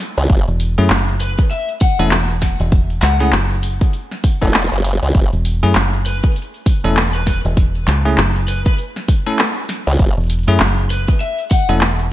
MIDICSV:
0, 0, Header, 1, 6, 480
1, 0, Start_track
1, 0, Key_signature, 3, "minor"
1, 0, Tempo, 606061
1, 236, Time_signature, 4, 2, 24, 8
1, 9602, End_track
2, 0, Start_track
2, 0, Title_t, "Lead electric guitar"
2, 0, Program_c, 0, 29
2, 955, Note_on_c, 0, 71, 95
2, 1090, Note_off_c, 0, 71, 0
2, 1195, Note_on_c, 0, 76, 90
2, 1330, Note_off_c, 0, 76, 0
2, 1437, Note_on_c, 0, 78, 89
2, 1571, Note_off_c, 0, 78, 0
2, 2396, Note_on_c, 0, 78, 86
2, 2488, Note_off_c, 0, 78, 0
2, 2540, Note_on_c, 0, 78, 80
2, 2602, Note_off_c, 0, 78, 0
2, 4800, Note_on_c, 0, 71, 95
2, 4932, Note_off_c, 0, 71, 0
2, 5661, Note_on_c, 0, 71, 92
2, 5722, Note_off_c, 0, 71, 0
2, 5757, Note_on_c, 0, 71, 77
2, 5848, Note_off_c, 0, 71, 0
2, 6718, Note_on_c, 0, 71, 94
2, 6809, Note_off_c, 0, 71, 0
2, 6862, Note_on_c, 0, 71, 76
2, 6923, Note_off_c, 0, 71, 0
2, 8636, Note_on_c, 0, 71, 95
2, 8770, Note_off_c, 0, 71, 0
2, 8875, Note_on_c, 0, 76, 95
2, 9010, Note_off_c, 0, 76, 0
2, 9118, Note_on_c, 0, 78, 94
2, 9251, Note_off_c, 0, 78, 0
2, 9602, End_track
3, 0, Start_track
3, 0, Title_t, "Tine electric piano"
3, 0, Program_c, 1, 4
3, 617, Note_on_c, 1, 64, 85
3, 618, Note_on_c, 1, 57, 93
3, 618, Note_on_c, 1, 61, 86
3, 618, Note_on_c, 1, 68, 102
3, 717, Note_off_c, 1, 61, 0
3, 717, Note_off_c, 1, 64, 0
3, 717, Note_off_c, 1, 68, 0
3, 718, Note_off_c, 1, 57, 0
3, 1578, Note_on_c, 1, 61, 86
3, 1579, Note_on_c, 1, 57, 91
3, 1579, Note_on_c, 1, 64, 86
3, 1579, Note_on_c, 1, 69, 104
3, 1678, Note_off_c, 1, 57, 0
3, 1678, Note_off_c, 1, 61, 0
3, 1678, Note_off_c, 1, 64, 0
3, 1678, Note_off_c, 1, 69, 0
3, 2537, Note_on_c, 1, 61, 83
3, 2538, Note_on_c, 1, 57, 91
3, 2538, Note_on_c, 1, 64, 88
3, 2538, Note_on_c, 1, 68, 101
3, 2637, Note_off_c, 1, 57, 0
3, 2637, Note_off_c, 1, 61, 0
3, 2637, Note_off_c, 1, 64, 0
3, 2638, Note_off_c, 1, 68, 0
3, 3497, Note_on_c, 1, 69, 99
3, 3498, Note_on_c, 1, 57, 92
3, 3498, Note_on_c, 1, 61, 85
3, 3498, Note_on_c, 1, 64, 83
3, 3597, Note_off_c, 1, 57, 0
3, 3597, Note_off_c, 1, 61, 0
3, 3597, Note_off_c, 1, 64, 0
3, 3597, Note_off_c, 1, 69, 0
3, 4458, Note_on_c, 1, 57, 90
3, 4458, Note_on_c, 1, 61, 83
3, 4459, Note_on_c, 1, 64, 85
3, 4459, Note_on_c, 1, 68, 105
3, 4558, Note_off_c, 1, 57, 0
3, 4558, Note_off_c, 1, 61, 0
3, 4558, Note_off_c, 1, 64, 0
3, 4558, Note_off_c, 1, 68, 0
3, 5419, Note_on_c, 1, 61, 85
3, 5420, Note_on_c, 1, 57, 94
3, 5420, Note_on_c, 1, 64, 84
3, 5420, Note_on_c, 1, 69, 105
3, 5518, Note_off_c, 1, 57, 0
3, 5518, Note_off_c, 1, 61, 0
3, 5518, Note_off_c, 1, 64, 0
3, 5519, Note_off_c, 1, 69, 0
3, 6378, Note_on_c, 1, 61, 85
3, 6378, Note_on_c, 1, 68, 104
3, 6379, Note_on_c, 1, 57, 92
3, 6379, Note_on_c, 1, 64, 86
3, 6478, Note_off_c, 1, 57, 0
3, 6478, Note_off_c, 1, 61, 0
3, 6478, Note_off_c, 1, 64, 0
3, 6478, Note_off_c, 1, 68, 0
3, 7338, Note_on_c, 1, 61, 86
3, 7338, Note_on_c, 1, 64, 85
3, 7338, Note_on_c, 1, 69, 104
3, 7339, Note_on_c, 1, 57, 92
3, 7438, Note_off_c, 1, 57, 0
3, 7438, Note_off_c, 1, 61, 0
3, 7438, Note_off_c, 1, 64, 0
3, 7438, Note_off_c, 1, 69, 0
3, 8299, Note_on_c, 1, 61, 87
3, 8299, Note_on_c, 1, 68, 105
3, 8300, Note_on_c, 1, 57, 93
3, 8300, Note_on_c, 1, 64, 86
3, 8398, Note_off_c, 1, 57, 0
3, 8398, Note_off_c, 1, 61, 0
3, 8398, Note_off_c, 1, 68, 0
3, 8399, Note_off_c, 1, 64, 0
3, 9258, Note_on_c, 1, 57, 93
3, 9258, Note_on_c, 1, 61, 87
3, 9258, Note_on_c, 1, 64, 86
3, 9258, Note_on_c, 1, 69, 101
3, 9357, Note_off_c, 1, 61, 0
3, 9358, Note_off_c, 1, 57, 0
3, 9358, Note_off_c, 1, 64, 0
3, 9358, Note_off_c, 1, 69, 0
3, 9602, End_track
4, 0, Start_track
4, 0, Title_t, "Fingered electric bass"
4, 0, Program_c, 2, 33
4, 380, Note_on_c, 2, 28, 96
4, 597, Note_off_c, 2, 28, 0
4, 620, Note_on_c, 2, 42, 100
4, 701, Note_off_c, 2, 42, 0
4, 714, Note_on_c, 2, 30, 97
4, 1076, Note_off_c, 2, 30, 0
4, 1578, Note_on_c, 2, 28, 98
4, 2036, Note_off_c, 2, 28, 0
4, 2057, Note_on_c, 2, 28, 97
4, 2379, Note_off_c, 2, 28, 0
4, 2394, Note_on_c, 2, 37, 97
4, 2620, Note_off_c, 2, 37, 0
4, 2635, Note_on_c, 2, 30, 95
4, 2996, Note_off_c, 2, 30, 0
4, 4220, Note_on_c, 2, 28, 95
4, 4437, Note_off_c, 2, 28, 0
4, 4462, Note_on_c, 2, 42, 98
4, 4542, Note_off_c, 2, 42, 0
4, 4558, Note_on_c, 2, 30, 99
4, 4917, Note_off_c, 2, 30, 0
4, 5420, Note_on_c, 2, 28, 100
4, 5877, Note_off_c, 2, 28, 0
4, 5899, Note_on_c, 2, 28, 99
4, 6220, Note_off_c, 2, 28, 0
4, 6236, Note_on_c, 2, 37, 98
4, 6461, Note_off_c, 2, 37, 0
4, 6474, Note_on_c, 2, 30, 99
4, 6835, Note_off_c, 2, 30, 0
4, 8058, Note_on_c, 2, 28, 100
4, 8276, Note_off_c, 2, 28, 0
4, 8298, Note_on_c, 2, 42, 101
4, 8380, Note_off_c, 2, 42, 0
4, 8396, Note_on_c, 2, 30, 97
4, 8757, Note_off_c, 2, 30, 0
4, 9258, Note_on_c, 2, 28, 98
4, 9602, Note_off_c, 2, 28, 0
4, 9602, End_track
5, 0, Start_track
5, 0, Title_t, "Wobble bass"
5, 0, Program_c, 3, 39
5, 139, Note_on_c, 3, 37, 103
5, 221, Note_off_c, 3, 37, 0
5, 236, Note_on_c, 3, 30, 100
5, 356, Note_off_c, 3, 30, 0
5, 3500, Note_on_c, 3, 28, 102
5, 3717, Note_off_c, 3, 28, 0
5, 3738, Note_on_c, 3, 30, 96
5, 3956, Note_off_c, 3, 30, 0
5, 3980, Note_on_c, 3, 37, 99
5, 4061, Note_off_c, 3, 37, 0
5, 4077, Note_on_c, 3, 30, 97
5, 4197, Note_off_c, 3, 30, 0
5, 7819, Note_on_c, 3, 37, 98
5, 7900, Note_off_c, 3, 37, 0
5, 7916, Note_on_c, 3, 30, 102
5, 8036, Note_off_c, 3, 30, 0
5, 9602, End_track
6, 0, Start_track
6, 0, Title_t, "Drums"
6, 0, Note_on_c, 9, 82, 92
6, 76, Note_off_c, 9, 82, 0
6, 139, Note_on_c, 9, 46, 31
6, 139, Note_on_c, 9, 82, 43
6, 218, Note_off_c, 9, 46, 0
6, 218, Note_off_c, 9, 82, 0
6, 232, Note_on_c, 9, 82, 56
6, 234, Note_on_c, 9, 46, 39
6, 236, Note_on_c, 9, 36, 123
6, 311, Note_off_c, 9, 82, 0
6, 314, Note_off_c, 9, 46, 0
6, 315, Note_off_c, 9, 36, 0
6, 377, Note_on_c, 9, 46, 20
6, 456, Note_off_c, 9, 46, 0
6, 474, Note_on_c, 9, 46, 70
6, 478, Note_on_c, 9, 82, 107
6, 553, Note_off_c, 9, 46, 0
6, 558, Note_off_c, 9, 82, 0
6, 617, Note_on_c, 9, 46, 14
6, 622, Note_on_c, 9, 82, 41
6, 666, Note_off_c, 9, 46, 0
6, 666, Note_on_c, 9, 46, 18
6, 701, Note_off_c, 9, 82, 0
6, 711, Note_on_c, 9, 82, 52
6, 714, Note_off_c, 9, 46, 0
6, 714, Note_on_c, 9, 39, 127
6, 714, Note_on_c, 9, 46, 41
6, 786, Note_off_c, 9, 46, 0
6, 786, Note_on_c, 9, 46, 25
6, 790, Note_off_c, 9, 82, 0
6, 793, Note_off_c, 9, 39, 0
6, 857, Note_off_c, 9, 46, 0
6, 857, Note_on_c, 9, 46, 21
6, 936, Note_off_c, 9, 46, 0
6, 952, Note_on_c, 9, 46, 70
6, 961, Note_on_c, 9, 82, 97
6, 1032, Note_off_c, 9, 46, 0
6, 1040, Note_off_c, 9, 82, 0
6, 1097, Note_on_c, 9, 46, 32
6, 1097, Note_on_c, 9, 82, 38
6, 1098, Note_on_c, 9, 36, 113
6, 1176, Note_off_c, 9, 46, 0
6, 1176, Note_off_c, 9, 82, 0
6, 1177, Note_off_c, 9, 36, 0
6, 1192, Note_on_c, 9, 46, 40
6, 1196, Note_on_c, 9, 82, 54
6, 1272, Note_off_c, 9, 46, 0
6, 1275, Note_off_c, 9, 82, 0
6, 1335, Note_on_c, 9, 82, 39
6, 1336, Note_on_c, 9, 46, 20
6, 1414, Note_off_c, 9, 82, 0
6, 1415, Note_off_c, 9, 46, 0
6, 1432, Note_on_c, 9, 46, 69
6, 1435, Note_on_c, 9, 36, 117
6, 1438, Note_on_c, 9, 82, 95
6, 1511, Note_off_c, 9, 46, 0
6, 1514, Note_off_c, 9, 36, 0
6, 1517, Note_off_c, 9, 82, 0
6, 1578, Note_on_c, 9, 46, 32
6, 1583, Note_on_c, 9, 82, 40
6, 1657, Note_off_c, 9, 46, 0
6, 1662, Note_off_c, 9, 82, 0
6, 1674, Note_on_c, 9, 39, 123
6, 1674, Note_on_c, 9, 46, 39
6, 1674, Note_on_c, 9, 82, 59
6, 1753, Note_off_c, 9, 39, 0
6, 1753, Note_off_c, 9, 46, 0
6, 1754, Note_off_c, 9, 82, 0
6, 1817, Note_on_c, 9, 46, 20
6, 1823, Note_on_c, 9, 82, 40
6, 1896, Note_off_c, 9, 46, 0
6, 1902, Note_off_c, 9, 82, 0
6, 1910, Note_on_c, 9, 82, 101
6, 1914, Note_on_c, 9, 38, 41
6, 1914, Note_on_c, 9, 46, 72
6, 1916, Note_on_c, 9, 36, 64
6, 1989, Note_off_c, 9, 82, 0
6, 1994, Note_off_c, 9, 38, 0
6, 1994, Note_off_c, 9, 46, 0
6, 1995, Note_off_c, 9, 36, 0
6, 2055, Note_on_c, 9, 82, 40
6, 2058, Note_on_c, 9, 46, 31
6, 2134, Note_off_c, 9, 82, 0
6, 2137, Note_off_c, 9, 46, 0
6, 2154, Note_on_c, 9, 46, 41
6, 2155, Note_on_c, 9, 36, 127
6, 2157, Note_on_c, 9, 82, 55
6, 2233, Note_off_c, 9, 46, 0
6, 2235, Note_off_c, 9, 36, 0
6, 2236, Note_off_c, 9, 82, 0
6, 2298, Note_on_c, 9, 46, 21
6, 2377, Note_off_c, 9, 46, 0
6, 2393, Note_on_c, 9, 82, 89
6, 2394, Note_on_c, 9, 39, 64
6, 2394, Note_on_c, 9, 46, 70
6, 2473, Note_off_c, 9, 39, 0
6, 2473, Note_off_c, 9, 46, 0
6, 2473, Note_off_c, 9, 82, 0
6, 2538, Note_on_c, 9, 46, 31
6, 2540, Note_on_c, 9, 82, 43
6, 2617, Note_off_c, 9, 46, 0
6, 2619, Note_off_c, 9, 82, 0
6, 2634, Note_on_c, 9, 39, 125
6, 2634, Note_on_c, 9, 46, 42
6, 2634, Note_on_c, 9, 82, 60
6, 2713, Note_off_c, 9, 82, 0
6, 2714, Note_off_c, 9, 39, 0
6, 2714, Note_off_c, 9, 46, 0
6, 2777, Note_on_c, 9, 46, 20
6, 2857, Note_off_c, 9, 46, 0
6, 2875, Note_on_c, 9, 46, 71
6, 2881, Note_on_c, 9, 82, 99
6, 2955, Note_off_c, 9, 46, 0
6, 2960, Note_off_c, 9, 82, 0
6, 3016, Note_on_c, 9, 82, 39
6, 3019, Note_on_c, 9, 46, 31
6, 3020, Note_on_c, 9, 36, 112
6, 3095, Note_off_c, 9, 82, 0
6, 3098, Note_off_c, 9, 46, 0
6, 3099, Note_off_c, 9, 36, 0
6, 3115, Note_on_c, 9, 46, 41
6, 3117, Note_on_c, 9, 82, 52
6, 3194, Note_off_c, 9, 46, 0
6, 3197, Note_off_c, 9, 82, 0
6, 3259, Note_on_c, 9, 38, 35
6, 3259, Note_on_c, 9, 46, 21
6, 3263, Note_on_c, 9, 82, 34
6, 3338, Note_off_c, 9, 38, 0
6, 3338, Note_off_c, 9, 46, 0
6, 3342, Note_off_c, 9, 82, 0
6, 3357, Note_on_c, 9, 36, 107
6, 3357, Note_on_c, 9, 46, 74
6, 3357, Note_on_c, 9, 82, 93
6, 3436, Note_off_c, 9, 36, 0
6, 3436, Note_off_c, 9, 46, 0
6, 3436, Note_off_c, 9, 82, 0
6, 3498, Note_on_c, 9, 82, 39
6, 3500, Note_on_c, 9, 36, 67
6, 3500, Note_on_c, 9, 46, 31
6, 3577, Note_off_c, 9, 82, 0
6, 3579, Note_off_c, 9, 36, 0
6, 3579, Note_off_c, 9, 46, 0
6, 3595, Note_on_c, 9, 82, 54
6, 3597, Note_on_c, 9, 39, 122
6, 3597, Note_on_c, 9, 46, 41
6, 3674, Note_off_c, 9, 82, 0
6, 3676, Note_off_c, 9, 39, 0
6, 3676, Note_off_c, 9, 46, 0
6, 3739, Note_on_c, 9, 82, 41
6, 3740, Note_on_c, 9, 46, 20
6, 3818, Note_off_c, 9, 82, 0
6, 3820, Note_off_c, 9, 46, 0
6, 3838, Note_on_c, 9, 46, 74
6, 3838, Note_on_c, 9, 82, 98
6, 3917, Note_off_c, 9, 46, 0
6, 3917, Note_off_c, 9, 82, 0
6, 3978, Note_on_c, 9, 82, 45
6, 3980, Note_on_c, 9, 46, 31
6, 4057, Note_off_c, 9, 82, 0
6, 4060, Note_off_c, 9, 46, 0
6, 4075, Note_on_c, 9, 82, 51
6, 4077, Note_on_c, 9, 36, 119
6, 4077, Note_on_c, 9, 46, 44
6, 4154, Note_off_c, 9, 82, 0
6, 4156, Note_off_c, 9, 36, 0
6, 4157, Note_off_c, 9, 46, 0
6, 4220, Note_on_c, 9, 46, 22
6, 4300, Note_off_c, 9, 46, 0
6, 4317, Note_on_c, 9, 46, 74
6, 4320, Note_on_c, 9, 82, 93
6, 4396, Note_off_c, 9, 46, 0
6, 4399, Note_off_c, 9, 82, 0
6, 4459, Note_on_c, 9, 46, 32
6, 4460, Note_on_c, 9, 82, 39
6, 4538, Note_off_c, 9, 46, 0
6, 4539, Note_off_c, 9, 82, 0
6, 4556, Note_on_c, 9, 39, 121
6, 4556, Note_on_c, 9, 46, 42
6, 4560, Note_on_c, 9, 82, 58
6, 4635, Note_off_c, 9, 39, 0
6, 4635, Note_off_c, 9, 46, 0
6, 4639, Note_off_c, 9, 82, 0
6, 4700, Note_on_c, 9, 46, 21
6, 4779, Note_off_c, 9, 46, 0
6, 4794, Note_on_c, 9, 82, 90
6, 4797, Note_on_c, 9, 46, 74
6, 4874, Note_off_c, 9, 82, 0
6, 4876, Note_off_c, 9, 46, 0
6, 4937, Note_on_c, 9, 82, 40
6, 4940, Note_on_c, 9, 36, 106
6, 4941, Note_on_c, 9, 46, 14
6, 5005, Note_off_c, 9, 46, 0
6, 5005, Note_on_c, 9, 46, 20
6, 5016, Note_off_c, 9, 82, 0
6, 5019, Note_off_c, 9, 36, 0
6, 5038, Note_off_c, 9, 46, 0
6, 5038, Note_on_c, 9, 46, 42
6, 5040, Note_on_c, 9, 82, 52
6, 5085, Note_off_c, 9, 46, 0
6, 5085, Note_on_c, 9, 46, 26
6, 5120, Note_off_c, 9, 82, 0
6, 5165, Note_off_c, 9, 46, 0
6, 5178, Note_on_c, 9, 82, 33
6, 5181, Note_on_c, 9, 46, 22
6, 5257, Note_off_c, 9, 82, 0
6, 5260, Note_off_c, 9, 46, 0
6, 5276, Note_on_c, 9, 36, 107
6, 5278, Note_on_c, 9, 46, 79
6, 5280, Note_on_c, 9, 82, 95
6, 5355, Note_off_c, 9, 36, 0
6, 5357, Note_off_c, 9, 46, 0
6, 5359, Note_off_c, 9, 82, 0
6, 5421, Note_on_c, 9, 46, 33
6, 5421, Note_on_c, 9, 82, 39
6, 5500, Note_off_c, 9, 46, 0
6, 5500, Note_off_c, 9, 82, 0
6, 5519, Note_on_c, 9, 39, 119
6, 5519, Note_on_c, 9, 46, 42
6, 5519, Note_on_c, 9, 82, 56
6, 5598, Note_off_c, 9, 39, 0
6, 5598, Note_off_c, 9, 46, 0
6, 5598, Note_off_c, 9, 82, 0
6, 5654, Note_on_c, 9, 82, 36
6, 5662, Note_on_c, 9, 46, 22
6, 5733, Note_off_c, 9, 82, 0
6, 5741, Note_off_c, 9, 46, 0
6, 5756, Note_on_c, 9, 36, 64
6, 5757, Note_on_c, 9, 38, 40
6, 5757, Note_on_c, 9, 46, 76
6, 5762, Note_on_c, 9, 82, 102
6, 5835, Note_off_c, 9, 36, 0
6, 5836, Note_off_c, 9, 38, 0
6, 5836, Note_off_c, 9, 46, 0
6, 5841, Note_off_c, 9, 82, 0
6, 5898, Note_on_c, 9, 82, 40
6, 5900, Note_on_c, 9, 46, 31
6, 5977, Note_off_c, 9, 82, 0
6, 5979, Note_off_c, 9, 46, 0
6, 5996, Note_on_c, 9, 36, 116
6, 5997, Note_on_c, 9, 46, 45
6, 6001, Note_on_c, 9, 82, 50
6, 6075, Note_off_c, 9, 36, 0
6, 6076, Note_off_c, 9, 46, 0
6, 6080, Note_off_c, 9, 82, 0
6, 6141, Note_on_c, 9, 46, 23
6, 6220, Note_off_c, 9, 46, 0
6, 6233, Note_on_c, 9, 82, 90
6, 6239, Note_on_c, 9, 39, 59
6, 6239, Note_on_c, 9, 46, 77
6, 6312, Note_off_c, 9, 82, 0
6, 6318, Note_off_c, 9, 39, 0
6, 6318, Note_off_c, 9, 46, 0
6, 6381, Note_on_c, 9, 46, 33
6, 6383, Note_on_c, 9, 82, 41
6, 6460, Note_off_c, 9, 46, 0
6, 6462, Note_off_c, 9, 82, 0
6, 6472, Note_on_c, 9, 82, 50
6, 6478, Note_on_c, 9, 39, 118
6, 6478, Note_on_c, 9, 46, 44
6, 6551, Note_off_c, 9, 82, 0
6, 6557, Note_off_c, 9, 39, 0
6, 6557, Note_off_c, 9, 46, 0
6, 6620, Note_on_c, 9, 46, 23
6, 6699, Note_off_c, 9, 46, 0
6, 6709, Note_on_c, 9, 82, 92
6, 6717, Note_on_c, 9, 46, 74
6, 6788, Note_off_c, 9, 82, 0
6, 6796, Note_off_c, 9, 46, 0
6, 6850, Note_on_c, 9, 82, 34
6, 6858, Note_on_c, 9, 36, 103
6, 6860, Note_on_c, 9, 46, 34
6, 6929, Note_off_c, 9, 82, 0
6, 6938, Note_off_c, 9, 36, 0
6, 6939, Note_off_c, 9, 46, 0
6, 6956, Note_on_c, 9, 46, 46
6, 6962, Note_on_c, 9, 82, 55
6, 7035, Note_off_c, 9, 46, 0
6, 7041, Note_off_c, 9, 82, 0
6, 7096, Note_on_c, 9, 82, 36
6, 7099, Note_on_c, 9, 38, 37
6, 7099, Note_on_c, 9, 46, 22
6, 7176, Note_off_c, 9, 82, 0
6, 7178, Note_off_c, 9, 38, 0
6, 7178, Note_off_c, 9, 46, 0
6, 7191, Note_on_c, 9, 82, 86
6, 7195, Note_on_c, 9, 36, 108
6, 7195, Note_on_c, 9, 46, 80
6, 7270, Note_off_c, 9, 82, 0
6, 7274, Note_off_c, 9, 36, 0
6, 7274, Note_off_c, 9, 46, 0
6, 7335, Note_on_c, 9, 82, 36
6, 7339, Note_on_c, 9, 46, 34
6, 7414, Note_off_c, 9, 82, 0
6, 7418, Note_off_c, 9, 46, 0
6, 7432, Note_on_c, 9, 82, 54
6, 7436, Note_on_c, 9, 39, 116
6, 7436, Note_on_c, 9, 46, 45
6, 7511, Note_off_c, 9, 82, 0
6, 7515, Note_off_c, 9, 39, 0
6, 7515, Note_off_c, 9, 46, 0
6, 7579, Note_on_c, 9, 46, 10
6, 7581, Note_on_c, 9, 82, 39
6, 7643, Note_off_c, 9, 46, 0
6, 7643, Note_on_c, 9, 46, 13
6, 7660, Note_off_c, 9, 82, 0
6, 7674, Note_off_c, 9, 46, 0
6, 7674, Note_on_c, 9, 38, 41
6, 7674, Note_on_c, 9, 46, 80
6, 7674, Note_on_c, 9, 82, 96
6, 7723, Note_off_c, 9, 46, 0
6, 7723, Note_on_c, 9, 46, 17
6, 7753, Note_off_c, 9, 82, 0
6, 7754, Note_off_c, 9, 38, 0
6, 7802, Note_off_c, 9, 46, 0
6, 7819, Note_on_c, 9, 46, 34
6, 7819, Note_on_c, 9, 82, 36
6, 7898, Note_off_c, 9, 46, 0
6, 7898, Note_off_c, 9, 82, 0
6, 7911, Note_on_c, 9, 82, 51
6, 7915, Note_on_c, 9, 36, 114
6, 7915, Note_on_c, 9, 46, 45
6, 7990, Note_off_c, 9, 82, 0
6, 7994, Note_off_c, 9, 36, 0
6, 7994, Note_off_c, 9, 46, 0
6, 8059, Note_on_c, 9, 46, 10
6, 8083, Note_off_c, 9, 46, 0
6, 8083, Note_on_c, 9, 46, 12
6, 8108, Note_off_c, 9, 46, 0
6, 8108, Note_on_c, 9, 46, 14
6, 8131, Note_off_c, 9, 46, 0
6, 8131, Note_on_c, 9, 46, 14
6, 8156, Note_off_c, 9, 46, 0
6, 8156, Note_on_c, 9, 46, 78
6, 8156, Note_on_c, 9, 82, 97
6, 8227, Note_off_c, 9, 46, 0
6, 8227, Note_on_c, 9, 46, 18
6, 8235, Note_off_c, 9, 82, 0
6, 8263, Note_off_c, 9, 46, 0
6, 8263, Note_on_c, 9, 46, 20
6, 8297, Note_off_c, 9, 46, 0
6, 8297, Note_on_c, 9, 46, 34
6, 8297, Note_on_c, 9, 82, 38
6, 8376, Note_off_c, 9, 46, 0
6, 8376, Note_off_c, 9, 82, 0
6, 8394, Note_on_c, 9, 39, 118
6, 8394, Note_on_c, 9, 46, 46
6, 8397, Note_on_c, 9, 82, 55
6, 8474, Note_off_c, 9, 39, 0
6, 8474, Note_off_c, 9, 46, 0
6, 8477, Note_off_c, 9, 82, 0
6, 8539, Note_on_c, 9, 46, 22
6, 8618, Note_off_c, 9, 46, 0
6, 8635, Note_on_c, 9, 46, 78
6, 8637, Note_on_c, 9, 82, 92
6, 8714, Note_off_c, 9, 46, 0
6, 8716, Note_off_c, 9, 82, 0
6, 8777, Note_on_c, 9, 46, 34
6, 8779, Note_on_c, 9, 36, 104
6, 8779, Note_on_c, 9, 82, 36
6, 8857, Note_off_c, 9, 46, 0
6, 8858, Note_off_c, 9, 36, 0
6, 8858, Note_off_c, 9, 82, 0
6, 8872, Note_on_c, 9, 82, 47
6, 8875, Note_on_c, 9, 46, 44
6, 8951, Note_off_c, 9, 82, 0
6, 8954, Note_off_c, 9, 46, 0
6, 9017, Note_on_c, 9, 46, 22
6, 9023, Note_on_c, 9, 82, 34
6, 9097, Note_off_c, 9, 46, 0
6, 9102, Note_off_c, 9, 82, 0
6, 9111, Note_on_c, 9, 82, 93
6, 9114, Note_on_c, 9, 46, 78
6, 9116, Note_on_c, 9, 36, 104
6, 9190, Note_off_c, 9, 82, 0
6, 9193, Note_off_c, 9, 46, 0
6, 9195, Note_off_c, 9, 36, 0
6, 9257, Note_on_c, 9, 46, 35
6, 9259, Note_on_c, 9, 82, 38
6, 9337, Note_off_c, 9, 46, 0
6, 9338, Note_off_c, 9, 82, 0
6, 9354, Note_on_c, 9, 39, 110
6, 9354, Note_on_c, 9, 46, 45
6, 9358, Note_on_c, 9, 82, 56
6, 9433, Note_off_c, 9, 39, 0
6, 9433, Note_off_c, 9, 46, 0
6, 9437, Note_off_c, 9, 82, 0
6, 9498, Note_on_c, 9, 46, 22
6, 9498, Note_on_c, 9, 82, 35
6, 9577, Note_off_c, 9, 46, 0
6, 9577, Note_off_c, 9, 82, 0
6, 9602, End_track
0, 0, End_of_file